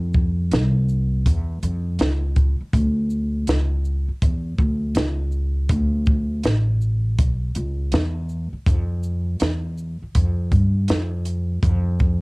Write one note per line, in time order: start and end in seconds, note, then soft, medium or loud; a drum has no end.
0.00 0.53 F2 loud
0.13 kick medium
0.13 shaker medium
0.51 1.22 C2 medium
0.51 snare loud
0.51 closed hi-hat medium
0.89 shaker medium
1.26 1.61 E2 medium
1.26 kick medium
1.26 closed hi-hat loud
1.63 1.98 F2 medium
1.63 closed hi-hat medium
1.63 shaker medium
1.99 2.57 C#2 medium
1.99 snare loud
1.99 closed hi-hat medium
2.36 kick medium
2.36 closed hi-hat soft
2.36 shaker soft
2.60 muted upright bass stroke soft
2.73 3.44 D2 medium
2.73 kick loud
2.73 closed hi-hat medium
3.10 shaker medium
3.47 4.05 C#2 medium
3.47 snare medium
3.47 closed hi-hat medium
3.85 shaker medium
4.08 muted upright bass stroke soft
4.22 4.57 E2 medium
4.22 kick medium
4.22 closed hi-hat medium
4.59 4.94 D2 medium
4.59 kick medium
4.59 shaker medium
4.95 5.66 C#2 medium
4.95 snare loud
4.95 closed hi-hat medium
5.32 shaker soft
5.69 6.40 D2 loud
5.69 kick loud
5.69 closed hi-hat medium
6.06 kick medium
6.06 shaker medium
6.44 7.19 A1 medium
6.44 snare loud
6.44 closed hi-hat medium
6.81 shaker medium
7.19 7.54 B1 medium
7.19 kick medium
7.19 closed hi-hat medium
7.55 7.91 C#2 medium
7.55 closed hi-hat medium
7.55 shaker medium
7.92 8.50 E2 medium
7.92 snare loud
7.92 closed hi-hat medium
8.29 shaker soft
8.53 muted upright bass stroke soft
8.66 9.37 F2 medium
8.66 kick loud
8.66 closed hi-hat medium
9.03 shaker medium
9.40 9.98 E2 medium
9.40 snare loud
9.40 closed hi-hat medium
9.78 shaker medium
10.02 muted upright bass stroke soft
10.15 10.50 F2 medium
10.15 kick medium
10.15 closed hi-hat loud
10.52 10.87 G2 medium
10.52 kick medium
10.52 closed hi-hat medium
10.52 shaker medium
10.88 11.59 F2 medium
10.88 snare loud
10.88 closed hi-hat medium
11.25 closed hi-hat soft
11.25 shaker soft
11.63 12.21 F2 medium
11.63 kick loud
11.63 closed hi-hat medium
12.00 kick medium
12.00 shaker medium